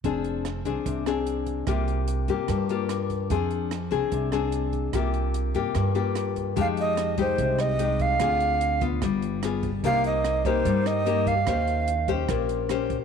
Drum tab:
HH |xxxxxxxx|xxxxxxxx|xxxxxxxx|xxxxxxxx|
SD |--r--r--|r---r-r-|--r--r--|r---r-r-|
BD |o--oo--o|o--oo--o|o--oo--o|o--oo--o|

HH |xxxxxxxx|xxxxxxxx|xxxxxxxx|xxxxxxxx|
SD |--r--r--|r---r-r-|--r--r--|r---r-r-|
BD |o--oo--o|o--oo--o|o--oo--o|o--oo--o|